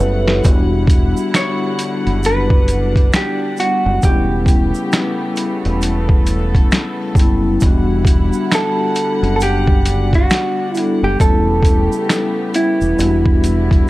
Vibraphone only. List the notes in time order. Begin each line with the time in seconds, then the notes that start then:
Already playing: G4 B4 C#5 E5
0.00 A4
0.28 E4 G4
0.42 G3 B3 D4
0.48 F#4
3.57 G3 B3
3.61 D4 F#4
4.02 G3 B3
4.06 C#4 E4
7.15 G3 B3
7.20 C#4 E4
7.61 G3 B3 D4
7.66 F#4
10.74 G3 B3 D4
10.80 A4
11.18 G3 B3
11.22 C#4 E4
12.97 G3 B3
13.01 D4 F#4